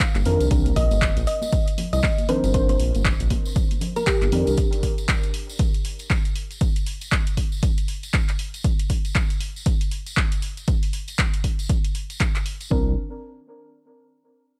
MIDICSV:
0, 0, Header, 1, 6, 480
1, 0, Start_track
1, 0, Key_signature, -3, "minor"
1, 0, Tempo, 508475
1, 480, Time_signature, 4, 2, 24, 8
1, 13779, End_track
2, 0, Start_track
2, 0, Title_t, "Synth pluck"
2, 0, Program_c, 0, 84
2, 721, Note_on_c, 0, 75, 91
2, 937, Note_off_c, 0, 75, 0
2, 1200, Note_on_c, 0, 75, 96
2, 1417, Note_off_c, 0, 75, 0
2, 1821, Note_on_c, 0, 75, 93
2, 2028, Note_off_c, 0, 75, 0
2, 2160, Note_on_c, 0, 72, 96
2, 2377, Note_off_c, 0, 72, 0
2, 2400, Note_on_c, 0, 72, 88
2, 2491, Note_off_c, 0, 72, 0
2, 2543, Note_on_c, 0, 72, 79
2, 2605, Note_off_c, 0, 72, 0
2, 3742, Note_on_c, 0, 70, 93
2, 3820, Note_off_c, 0, 70, 0
2, 3841, Note_on_c, 0, 67, 91
2, 4321, Note_off_c, 0, 67, 0
2, 13779, End_track
3, 0, Start_track
3, 0, Title_t, "Synth stab"
3, 0, Program_c, 1, 62
3, 0, Note_on_c, 1, 51, 85
3, 0, Note_on_c, 1, 60, 80
3, 0, Note_on_c, 1, 62, 78
3, 0, Note_on_c, 1, 70, 95
3, 214, Note_off_c, 1, 51, 0
3, 216, Note_off_c, 1, 60, 0
3, 219, Note_off_c, 1, 62, 0
3, 221, Note_off_c, 1, 70, 0
3, 238, Note_on_c, 1, 51, 92
3, 239, Note_on_c, 1, 60, 86
3, 242, Note_on_c, 1, 62, 85
3, 244, Note_on_c, 1, 70, 105
3, 455, Note_off_c, 1, 51, 0
3, 456, Note_off_c, 1, 60, 0
3, 458, Note_off_c, 1, 62, 0
3, 459, Note_off_c, 1, 70, 0
3, 474, Note_on_c, 1, 51, 84
3, 478, Note_on_c, 1, 60, 81
3, 482, Note_on_c, 1, 62, 78
3, 486, Note_on_c, 1, 70, 94
3, 2133, Note_off_c, 1, 51, 0
3, 2136, Note_off_c, 1, 60, 0
3, 2138, Note_off_c, 1, 62, 0
3, 2140, Note_off_c, 1, 70, 0
3, 2157, Note_on_c, 1, 51, 91
3, 2159, Note_on_c, 1, 60, 87
3, 2161, Note_on_c, 1, 62, 88
3, 2163, Note_on_c, 1, 70, 99
3, 2375, Note_off_c, 1, 51, 0
3, 2376, Note_off_c, 1, 60, 0
3, 2377, Note_off_c, 1, 62, 0
3, 2378, Note_off_c, 1, 70, 0
3, 2394, Note_on_c, 1, 51, 88
3, 2399, Note_on_c, 1, 60, 83
3, 2402, Note_on_c, 1, 62, 78
3, 2407, Note_on_c, 1, 70, 98
3, 4054, Note_off_c, 1, 51, 0
3, 4056, Note_off_c, 1, 60, 0
3, 4058, Note_off_c, 1, 62, 0
3, 4060, Note_off_c, 1, 70, 0
3, 4077, Note_on_c, 1, 51, 87
3, 4079, Note_on_c, 1, 60, 81
3, 4082, Note_on_c, 1, 62, 86
3, 4083, Note_on_c, 1, 70, 102
3, 4295, Note_off_c, 1, 51, 0
3, 4296, Note_off_c, 1, 60, 0
3, 4297, Note_off_c, 1, 62, 0
3, 4298, Note_off_c, 1, 70, 0
3, 11991, Note_on_c, 1, 51, 84
3, 11997, Note_on_c, 1, 60, 77
3, 12003, Note_on_c, 1, 62, 81
3, 12009, Note_on_c, 1, 70, 90
3, 12182, Note_off_c, 1, 51, 0
3, 12186, Note_off_c, 1, 60, 0
3, 12189, Note_off_c, 1, 62, 0
3, 12192, Note_off_c, 1, 70, 0
3, 13779, End_track
4, 0, Start_track
4, 0, Title_t, "Analog synth bass"
4, 0, Program_c, 2, 38
4, 143, Note_on_c, 2, 31, 90
4, 220, Note_off_c, 2, 31, 0
4, 241, Note_on_c, 2, 41, 93
4, 353, Note_off_c, 2, 41, 0
4, 383, Note_on_c, 2, 36, 76
4, 460, Note_off_c, 2, 36, 0
4, 481, Note_on_c, 2, 36, 98
4, 680, Note_off_c, 2, 36, 0
4, 721, Note_on_c, 2, 34, 76
4, 833, Note_off_c, 2, 34, 0
4, 863, Note_on_c, 2, 31, 82
4, 1044, Note_off_c, 2, 31, 0
4, 1102, Note_on_c, 2, 34, 96
4, 1180, Note_off_c, 2, 34, 0
4, 1822, Note_on_c, 2, 36, 82
4, 1900, Note_off_c, 2, 36, 0
4, 2302, Note_on_c, 2, 31, 89
4, 2607, Note_off_c, 2, 31, 0
4, 2640, Note_on_c, 2, 34, 78
4, 2753, Note_off_c, 2, 34, 0
4, 2782, Note_on_c, 2, 31, 86
4, 2963, Note_off_c, 2, 31, 0
4, 3023, Note_on_c, 2, 34, 95
4, 3100, Note_off_c, 2, 34, 0
4, 3982, Note_on_c, 2, 31, 84
4, 4060, Note_off_c, 2, 31, 0
4, 4081, Note_on_c, 2, 41, 88
4, 4193, Note_off_c, 2, 41, 0
4, 4223, Note_on_c, 2, 36, 76
4, 4300, Note_off_c, 2, 36, 0
4, 12000, Note_on_c, 2, 36, 90
4, 12224, Note_off_c, 2, 36, 0
4, 13779, End_track
5, 0, Start_track
5, 0, Title_t, "Downlifter"
5, 0, Program_c, 3, 103
5, 0, Note_on_c, 3, 60, 77
5, 480, Note_off_c, 3, 60, 0
5, 13779, End_track
6, 0, Start_track
6, 0, Title_t, "Drums"
6, 0, Note_on_c, 9, 42, 82
6, 1, Note_on_c, 9, 36, 125
6, 3, Note_on_c, 9, 39, 121
6, 94, Note_off_c, 9, 42, 0
6, 95, Note_off_c, 9, 36, 0
6, 97, Note_off_c, 9, 39, 0
6, 142, Note_on_c, 9, 42, 50
6, 143, Note_on_c, 9, 54, 46
6, 145, Note_on_c, 9, 39, 36
6, 146, Note_on_c, 9, 62, 83
6, 147, Note_on_c, 9, 63, 59
6, 237, Note_off_c, 9, 42, 0
6, 238, Note_off_c, 9, 54, 0
6, 238, Note_on_c, 9, 64, 86
6, 240, Note_off_c, 9, 39, 0
6, 240, Note_off_c, 9, 62, 0
6, 240, Note_on_c, 9, 46, 105
6, 241, Note_off_c, 9, 63, 0
6, 332, Note_off_c, 9, 64, 0
6, 335, Note_off_c, 9, 46, 0
6, 382, Note_on_c, 9, 42, 38
6, 382, Note_on_c, 9, 54, 83
6, 476, Note_off_c, 9, 54, 0
6, 477, Note_off_c, 9, 42, 0
6, 480, Note_on_c, 9, 42, 75
6, 481, Note_on_c, 9, 36, 127
6, 484, Note_on_c, 9, 62, 54
6, 486, Note_on_c, 9, 54, 73
6, 575, Note_off_c, 9, 36, 0
6, 575, Note_off_c, 9, 42, 0
6, 578, Note_off_c, 9, 62, 0
6, 580, Note_off_c, 9, 54, 0
6, 620, Note_on_c, 9, 54, 43
6, 622, Note_on_c, 9, 42, 52
6, 622, Note_on_c, 9, 63, 90
6, 714, Note_off_c, 9, 54, 0
6, 716, Note_off_c, 9, 63, 0
6, 717, Note_off_c, 9, 42, 0
6, 720, Note_on_c, 9, 46, 118
6, 721, Note_on_c, 9, 36, 65
6, 725, Note_on_c, 9, 62, 85
6, 815, Note_off_c, 9, 36, 0
6, 815, Note_off_c, 9, 46, 0
6, 820, Note_off_c, 9, 62, 0
6, 859, Note_on_c, 9, 54, 76
6, 862, Note_on_c, 9, 63, 94
6, 863, Note_on_c, 9, 42, 36
6, 953, Note_off_c, 9, 54, 0
6, 956, Note_off_c, 9, 63, 0
6, 957, Note_off_c, 9, 42, 0
6, 960, Note_on_c, 9, 42, 76
6, 961, Note_on_c, 9, 36, 127
6, 963, Note_on_c, 9, 39, 127
6, 966, Note_on_c, 9, 54, 71
6, 1054, Note_off_c, 9, 42, 0
6, 1055, Note_off_c, 9, 36, 0
6, 1058, Note_off_c, 9, 39, 0
6, 1061, Note_off_c, 9, 54, 0
6, 1099, Note_on_c, 9, 62, 48
6, 1102, Note_on_c, 9, 42, 54
6, 1102, Note_on_c, 9, 54, 42
6, 1193, Note_off_c, 9, 62, 0
6, 1196, Note_off_c, 9, 54, 0
6, 1197, Note_off_c, 9, 42, 0
6, 1200, Note_on_c, 9, 46, 112
6, 1294, Note_off_c, 9, 46, 0
6, 1338, Note_on_c, 9, 62, 81
6, 1344, Note_on_c, 9, 54, 91
6, 1433, Note_off_c, 9, 62, 0
6, 1439, Note_off_c, 9, 54, 0
6, 1440, Note_on_c, 9, 36, 127
6, 1440, Note_on_c, 9, 42, 77
6, 1534, Note_off_c, 9, 42, 0
6, 1535, Note_off_c, 9, 36, 0
6, 1582, Note_on_c, 9, 42, 52
6, 1583, Note_on_c, 9, 54, 43
6, 1676, Note_off_c, 9, 42, 0
6, 1677, Note_off_c, 9, 54, 0
6, 1679, Note_on_c, 9, 62, 53
6, 1680, Note_on_c, 9, 46, 114
6, 1682, Note_on_c, 9, 64, 93
6, 1773, Note_off_c, 9, 62, 0
6, 1774, Note_off_c, 9, 46, 0
6, 1776, Note_off_c, 9, 64, 0
6, 1821, Note_on_c, 9, 42, 37
6, 1822, Note_on_c, 9, 54, 81
6, 1916, Note_off_c, 9, 42, 0
6, 1917, Note_off_c, 9, 54, 0
6, 1920, Note_on_c, 9, 36, 127
6, 1920, Note_on_c, 9, 46, 64
6, 1921, Note_on_c, 9, 62, 85
6, 1923, Note_on_c, 9, 39, 123
6, 2014, Note_off_c, 9, 46, 0
6, 2015, Note_off_c, 9, 36, 0
6, 2015, Note_off_c, 9, 62, 0
6, 2017, Note_off_c, 9, 39, 0
6, 2061, Note_on_c, 9, 63, 68
6, 2062, Note_on_c, 9, 42, 50
6, 2066, Note_on_c, 9, 54, 42
6, 2156, Note_off_c, 9, 42, 0
6, 2156, Note_off_c, 9, 63, 0
6, 2157, Note_on_c, 9, 64, 83
6, 2159, Note_on_c, 9, 46, 106
6, 2161, Note_off_c, 9, 54, 0
6, 2252, Note_off_c, 9, 64, 0
6, 2254, Note_off_c, 9, 46, 0
6, 2300, Note_on_c, 9, 62, 55
6, 2301, Note_on_c, 9, 54, 77
6, 2302, Note_on_c, 9, 42, 37
6, 2394, Note_off_c, 9, 62, 0
6, 2395, Note_off_c, 9, 54, 0
6, 2396, Note_off_c, 9, 42, 0
6, 2399, Note_on_c, 9, 42, 72
6, 2400, Note_on_c, 9, 36, 127
6, 2400, Note_on_c, 9, 54, 73
6, 2493, Note_off_c, 9, 42, 0
6, 2494, Note_off_c, 9, 54, 0
6, 2495, Note_off_c, 9, 36, 0
6, 2541, Note_on_c, 9, 42, 50
6, 2542, Note_on_c, 9, 62, 72
6, 2542, Note_on_c, 9, 63, 87
6, 2551, Note_on_c, 9, 54, 41
6, 2635, Note_off_c, 9, 42, 0
6, 2636, Note_off_c, 9, 63, 0
6, 2637, Note_off_c, 9, 62, 0
6, 2639, Note_on_c, 9, 46, 114
6, 2645, Note_off_c, 9, 54, 0
6, 2733, Note_off_c, 9, 46, 0
6, 2781, Note_on_c, 9, 42, 35
6, 2787, Note_on_c, 9, 54, 79
6, 2788, Note_on_c, 9, 63, 93
6, 2876, Note_off_c, 9, 42, 0
6, 2880, Note_on_c, 9, 36, 126
6, 2880, Note_on_c, 9, 42, 78
6, 2881, Note_off_c, 9, 54, 0
6, 2883, Note_off_c, 9, 63, 0
6, 2883, Note_on_c, 9, 39, 124
6, 2884, Note_on_c, 9, 54, 72
6, 2974, Note_off_c, 9, 42, 0
6, 2975, Note_off_c, 9, 36, 0
6, 2977, Note_off_c, 9, 39, 0
6, 2979, Note_off_c, 9, 54, 0
6, 3022, Note_on_c, 9, 42, 53
6, 3026, Note_on_c, 9, 54, 39
6, 3116, Note_off_c, 9, 42, 0
6, 3119, Note_on_c, 9, 46, 114
6, 3120, Note_off_c, 9, 54, 0
6, 3120, Note_on_c, 9, 36, 63
6, 3124, Note_on_c, 9, 62, 82
6, 3213, Note_off_c, 9, 46, 0
6, 3215, Note_off_c, 9, 36, 0
6, 3219, Note_off_c, 9, 62, 0
6, 3261, Note_on_c, 9, 54, 82
6, 3355, Note_off_c, 9, 54, 0
6, 3359, Note_on_c, 9, 54, 71
6, 3360, Note_on_c, 9, 36, 126
6, 3360, Note_on_c, 9, 42, 76
6, 3453, Note_off_c, 9, 54, 0
6, 3454, Note_off_c, 9, 42, 0
6, 3455, Note_off_c, 9, 36, 0
6, 3501, Note_on_c, 9, 54, 38
6, 3502, Note_on_c, 9, 42, 47
6, 3511, Note_on_c, 9, 62, 47
6, 3595, Note_off_c, 9, 54, 0
6, 3596, Note_off_c, 9, 42, 0
6, 3600, Note_on_c, 9, 46, 114
6, 3600, Note_on_c, 9, 64, 89
6, 3605, Note_off_c, 9, 62, 0
6, 3694, Note_off_c, 9, 46, 0
6, 3694, Note_off_c, 9, 64, 0
6, 3739, Note_on_c, 9, 54, 82
6, 3742, Note_on_c, 9, 42, 37
6, 3747, Note_on_c, 9, 62, 74
6, 3834, Note_off_c, 9, 54, 0
6, 3837, Note_off_c, 9, 42, 0
6, 3840, Note_on_c, 9, 36, 121
6, 3840, Note_on_c, 9, 42, 75
6, 3841, Note_off_c, 9, 62, 0
6, 3843, Note_on_c, 9, 39, 115
6, 3843, Note_on_c, 9, 54, 68
6, 3934, Note_off_c, 9, 42, 0
6, 3935, Note_off_c, 9, 36, 0
6, 3937, Note_off_c, 9, 39, 0
6, 3938, Note_off_c, 9, 54, 0
6, 3981, Note_on_c, 9, 54, 39
6, 3981, Note_on_c, 9, 63, 74
6, 3982, Note_on_c, 9, 42, 48
6, 3986, Note_on_c, 9, 39, 34
6, 4076, Note_off_c, 9, 54, 0
6, 4076, Note_off_c, 9, 63, 0
6, 4077, Note_off_c, 9, 42, 0
6, 4078, Note_on_c, 9, 62, 51
6, 4080, Note_off_c, 9, 39, 0
6, 4080, Note_on_c, 9, 46, 110
6, 4082, Note_on_c, 9, 64, 74
6, 4173, Note_off_c, 9, 62, 0
6, 4174, Note_off_c, 9, 46, 0
6, 4177, Note_off_c, 9, 64, 0
6, 4219, Note_on_c, 9, 54, 82
6, 4222, Note_on_c, 9, 42, 35
6, 4313, Note_off_c, 9, 54, 0
6, 4314, Note_on_c, 9, 54, 65
6, 4317, Note_off_c, 9, 42, 0
6, 4320, Note_on_c, 9, 42, 77
6, 4321, Note_on_c, 9, 36, 112
6, 4408, Note_off_c, 9, 54, 0
6, 4414, Note_off_c, 9, 42, 0
6, 4415, Note_off_c, 9, 36, 0
6, 4462, Note_on_c, 9, 42, 49
6, 4462, Note_on_c, 9, 54, 40
6, 4556, Note_off_c, 9, 42, 0
6, 4556, Note_off_c, 9, 54, 0
6, 4560, Note_on_c, 9, 46, 108
6, 4561, Note_on_c, 9, 36, 61
6, 4654, Note_off_c, 9, 46, 0
6, 4655, Note_off_c, 9, 36, 0
6, 4702, Note_on_c, 9, 42, 35
6, 4703, Note_on_c, 9, 54, 73
6, 4796, Note_off_c, 9, 42, 0
6, 4797, Note_off_c, 9, 54, 0
6, 4800, Note_on_c, 9, 42, 76
6, 4801, Note_on_c, 9, 36, 120
6, 4801, Note_on_c, 9, 54, 65
6, 4803, Note_on_c, 9, 39, 122
6, 4894, Note_off_c, 9, 42, 0
6, 4895, Note_off_c, 9, 36, 0
6, 4895, Note_off_c, 9, 54, 0
6, 4897, Note_off_c, 9, 39, 0
6, 4938, Note_on_c, 9, 54, 42
6, 4942, Note_on_c, 9, 42, 53
6, 5032, Note_off_c, 9, 54, 0
6, 5036, Note_off_c, 9, 42, 0
6, 5040, Note_on_c, 9, 46, 113
6, 5134, Note_off_c, 9, 46, 0
6, 5187, Note_on_c, 9, 54, 84
6, 5276, Note_off_c, 9, 54, 0
6, 5276, Note_on_c, 9, 54, 61
6, 5280, Note_on_c, 9, 42, 77
6, 5281, Note_on_c, 9, 36, 125
6, 5370, Note_off_c, 9, 54, 0
6, 5374, Note_off_c, 9, 42, 0
6, 5375, Note_off_c, 9, 36, 0
6, 5422, Note_on_c, 9, 42, 50
6, 5424, Note_on_c, 9, 54, 42
6, 5517, Note_off_c, 9, 42, 0
6, 5519, Note_off_c, 9, 54, 0
6, 5520, Note_on_c, 9, 46, 111
6, 5614, Note_off_c, 9, 46, 0
6, 5656, Note_on_c, 9, 54, 75
6, 5662, Note_on_c, 9, 42, 34
6, 5750, Note_off_c, 9, 54, 0
6, 5756, Note_off_c, 9, 42, 0
6, 5757, Note_on_c, 9, 54, 68
6, 5760, Note_on_c, 9, 36, 123
6, 5760, Note_on_c, 9, 46, 63
6, 5763, Note_on_c, 9, 39, 111
6, 5852, Note_off_c, 9, 54, 0
6, 5854, Note_off_c, 9, 46, 0
6, 5855, Note_off_c, 9, 36, 0
6, 5858, Note_off_c, 9, 39, 0
6, 5902, Note_on_c, 9, 42, 49
6, 5905, Note_on_c, 9, 54, 39
6, 5997, Note_off_c, 9, 42, 0
6, 5999, Note_off_c, 9, 54, 0
6, 6000, Note_on_c, 9, 46, 98
6, 6094, Note_off_c, 9, 46, 0
6, 6142, Note_on_c, 9, 42, 33
6, 6150, Note_on_c, 9, 54, 82
6, 6236, Note_off_c, 9, 42, 0
6, 6237, Note_off_c, 9, 54, 0
6, 6237, Note_on_c, 9, 54, 64
6, 6240, Note_on_c, 9, 36, 118
6, 6240, Note_on_c, 9, 42, 83
6, 6332, Note_off_c, 9, 54, 0
6, 6334, Note_off_c, 9, 42, 0
6, 6335, Note_off_c, 9, 36, 0
6, 6382, Note_on_c, 9, 42, 53
6, 6385, Note_on_c, 9, 54, 41
6, 6477, Note_off_c, 9, 42, 0
6, 6479, Note_off_c, 9, 54, 0
6, 6480, Note_on_c, 9, 46, 109
6, 6574, Note_off_c, 9, 46, 0
6, 6619, Note_on_c, 9, 54, 78
6, 6622, Note_on_c, 9, 42, 36
6, 6714, Note_off_c, 9, 54, 0
6, 6717, Note_off_c, 9, 42, 0
6, 6720, Note_on_c, 9, 42, 80
6, 6721, Note_on_c, 9, 36, 113
6, 6723, Note_on_c, 9, 39, 113
6, 6815, Note_off_c, 9, 36, 0
6, 6815, Note_off_c, 9, 42, 0
6, 6818, Note_off_c, 9, 39, 0
6, 6859, Note_on_c, 9, 54, 36
6, 6862, Note_on_c, 9, 42, 55
6, 6954, Note_off_c, 9, 54, 0
6, 6957, Note_off_c, 9, 42, 0
6, 6960, Note_on_c, 9, 46, 105
6, 6961, Note_on_c, 9, 36, 57
6, 7055, Note_off_c, 9, 36, 0
6, 7055, Note_off_c, 9, 46, 0
6, 7098, Note_on_c, 9, 54, 78
6, 7193, Note_off_c, 9, 54, 0
6, 7200, Note_on_c, 9, 42, 78
6, 7201, Note_on_c, 9, 36, 121
6, 7204, Note_on_c, 9, 54, 69
6, 7294, Note_off_c, 9, 42, 0
6, 7295, Note_off_c, 9, 36, 0
6, 7298, Note_off_c, 9, 54, 0
6, 7342, Note_on_c, 9, 42, 50
6, 7346, Note_on_c, 9, 54, 38
6, 7437, Note_off_c, 9, 42, 0
6, 7440, Note_on_c, 9, 46, 99
6, 7441, Note_off_c, 9, 54, 0
6, 7535, Note_off_c, 9, 46, 0
6, 7582, Note_on_c, 9, 42, 36
6, 7584, Note_on_c, 9, 54, 80
6, 7677, Note_off_c, 9, 42, 0
6, 7677, Note_off_c, 9, 54, 0
6, 7677, Note_on_c, 9, 54, 66
6, 7680, Note_on_c, 9, 42, 79
6, 7681, Note_on_c, 9, 36, 112
6, 7683, Note_on_c, 9, 39, 115
6, 7771, Note_off_c, 9, 54, 0
6, 7774, Note_off_c, 9, 42, 0
6, 7775, Note_off_c, 9, 36, 0
6, 7777, Note_off_c, 9, 39, 0
6, 7822, Note_on_c, 9, 42, 46
6, 7822, Note_on_c, 9, 54, 39
6, 7825, Note_on_c, 9, 39, 31
6, 7916, Note_off_c, 9, 54, 0
6, 7917, Note_off_c, 9, 42, 0
6, 7920, Note_off_c, 9, 39, 0
6, 7920, Note_on_c, 9, 46, 98
6, 8014, Note_off_c, 9, 46, 0
6, 8062, Note_on_c, 9, 42, 36
6, 8062, Note_on_c, 9, 54, 83
6, 8156, Note_off_c, 9, 42, 0
6, 8157, Note_off_c, 9, 54, 0
6, 8160, Note_on_c, 9, 36, 113
6, 8160, Note_on_c, 9, 42, 84
6, 8254, Note_off_c, 9, 42, 0
6, 8255, Note_off_c, 9, 36, 0
6, 8302, Note_on_c, 9, 42, 57
6, 8302, Note_on_c, 9, 54, 34
6, 8396, Note_off_c, 9, 42, 0
6, 8396, Note_off_c, 9, 54, 0
6, 8399, Note_on_c, 9, 46, 110
6, 8400, Note_on_c, 9, 36, 60
6, 8493, Note_off_c, 9, 46, 0
6, 8495, Note_off_c, 9, 36, 0
6, 8541, Note_on_c, 9, 42, 39
6, 8543, Note_on_c, 9, 54, 71
6, 8636, Note_off_c, 9, 42, 0
6, 8637, Note_off_c, 9, 54, 0
6, 8639, Note_on_c, 9, 42, 85
6, 8640, Note_on_c, 9, 36, 113
6, 8643, Note_on_c, 9, 39, 120
6, 8645, Note_on_c, 9, 54, 63
6, 8734, Note_off_c, 9, 42, 0
6, 8735, Note_off_c, 9, 36, 0
6, 8737, Note_off_c, 9, 39, 0
6, 8739, Note_off_c, 9, 54, 0
6, 8782, Note_on_c, 9, 42, 57
6, 8784, Note_on_c, 9, 54, 41
6, 8876, Note_off_c, 9, 42, 0
6, 8879, Note_off_c, 9, 54, 0
6, 8879, Note_on_c, 9, 46, 107
6, 8973, Note_off_c, 9, 46, 0
6, 9028, Note_on_c, 9, 54, 75
6, 9116, Note_off_c, 9, 54, 0
6, 9116, Note_on_c, 9, 54, 61
6, 9119, Note_on_c, 9, 42, 75
6, 9120, Note_on_c, 9, 36, 116
6, 9210, Note_off_c, 9, 54, 0
6, 9213, Note_off_c, 9, 42, 0
6, 9214, Note_off_c, 9, 36, 0
6, 9259, Note_on_c, 9, 54, 36
6, 9261, Note_on_c, 9, 42, 55
6, 9353, Note_off_c, 9, 54, 0
6, 9355, Note_off_c, 9, 42, 0
6, 9359, Note_on_c, 9, 46, 102
6, 9453, Note_off_c, 9, 46, 0
6, 9501, Note_on_c, 9, 42, 38
6, 9501, Note_on_c, 9, 54, 82
6, 9595, Note_off_c, 9, 54, 0
6, 9596, Note_off_c, 9, 42, 0
6, 9599, Note_on_c, 9, 46, 58
6, 9600, Note_on_c, 9, 36, 114
6, 9602, Note_on_c, 9, 39, 114
6, 9602, Note_on_c, 9, 54, 59
6, 9693, Note_off_c, 9, 46, 0
6, 9694, Note_off_c, 9, 36, 0
6, 9696, Note_off_c, 9, 54, 0
6, 9697, Note_off_c, 9, 39, 0
6, 9739, Note_on_c, 9, 54, 37
6, 9741, Note_on_c, 9, 42, 52
6, 9833, Note_off_c, 9, 54, 0
6, 9836, Note_off_c, 9, 42, 0
6, 9839, Note_on_c, 9, 46, 99
6, 9934, Note_off_c, 9, 46, 0
6, 9981, Note_on_c, 9, 42, 38
6, 9982, Note_on_c, 9, 54, 81
6, 10076, Note_off_c, 9, 42, 0
6, 10076, Note_off_c, 9, 54, 0
6, 10077, Note_on_c, 9, 54, 64
6, 10079, Note_on_c, 9, 42, 86
6, 10080, Note_on_c, 9, 36, 117
6, 10171, Note_off_c, 9, 54, 0
6, 10174, Note_off_c, 9, 42, 0
6, 10175, Note_off_c, 9, 36, 0
6, 10221, Note_on_c, 9, 46, 61
6, 10222, Note_on_c, 9, 54, 37
6, 10316, Note_off_c, 9, 46, 0
6, 10316, Note_off_c, 9, 54, 0
6, 10319, Note_on_c, 9, 46, 105
6, 10414, Note_off_c, 9, 46, 0
6, 10456, Note_on_c, 9, 54, 73
6, 10462, Note_on_c, 9, 42, 40
6, 10550, Note_off_c, 9, 54, 0
6, 10556, Note_off_c, 9, 42, 0
6, 10560, Note_on_c, 9, 36, 123
6, 10560, Note_on_c, 9, 42, 85
6, 10563, Note_on_c, 9, 39, 122
6, 10654, Note_off_c, 9, 42, 0
6, 10655, Note_off_c, 9, 36, 0
6, 10657, Note_off_c, 9, 39, 0
6, 10701, Note_on_c, 9, 42, 57
6, 10703, Note_on_c, 9, 54, 40
6, 10796, Note_off_c, 9, 42, 0
6, 10798, Note_off_c, 9, 54, 0
6, 10799, Note_on_c, 9, 46, 108
6, 10800, Note_on_c, 9, 36, 56
6, 10894, Note_off_c, 9, 46, 0
6, 10895, Note_off_c, 9, 36, 0
6, 10941, Note_on_c, 9, 42, 38
6, 10945, Note_on_c, 9, 54, 76
6, 11036, Note_off_c, 9, 42, 0
6, 11039, Note_off_c, 9, 54, 0
6, 11040, Note_on_c, 9, 36, 118
6, 11040, Note_on_c, 9, 42, 78
6, 11040, Note_on_c, 9, 54, 73
6, 11134, Note_off_c, 9, 42, 0
6, 11134, Note_off_c, 9, 54, 0
6, 11135, Note_off_c, 9, 36, 0
6, 11182, Note_on_c, 9, 42, 54
6, 11184, Note_on_c, 9, 54, 40
6, 11276, Note_off_c, 9, 42, 0
6, 11278, Note_off_c, 9, 54, 0
6, 11279, Note_on_c, 9, 46, 103
6, 11374, Note_off_c, 9, 46, 0
6, 11422, Note_on_c, 9, 42, 41
6, 11423, Note_on_c, 9, 54, 73
6, 11516, Note_off_c, 9, 42, 0
6, 11517, Note_off_c, 9, 54, 0
6, 11520, Note_on_c, 9, 36, 113
6, 11520, Note_on_c, 9, 42, 84
6, 11523, Note_on_c, 9, 39, 114
6, 11614, Note_off_c, 9, 42, 0
6, 11615, Note_off_c, 9, 36, 0
6, 11618, Note_off_c, 9, 39, 0
6, 11662, Note_on_c, 9, 42, 53
6, 11665, Note_on_c, 9, 39, 36
6, 11667, Note_on_c, 9, 54, 40
6, 11756, Note_off_c, 9, 42, 0
6, 11759, Note_off_c, 9, 39, 0
6, 11760, Note_on_c, 9, 46, 96
6, 11761, Note_off_c, 9, 54, 0
6, 11854, Note_off_c, 9, 46, 0
6, 11899, Note_on_c, 9, 54, 70
6, 11902, Note_on_c, 9, 42, 38
6, 11993, Note_off_c, 9, 54, 0
6, 11996, Note_off_c, 9, 42, 0
6, 12001, Note_on_c, 9, 36, 110
6, 12095, Note_off_c, 9, 36, 0
6, 13779, End_track
0, 0, End_of_file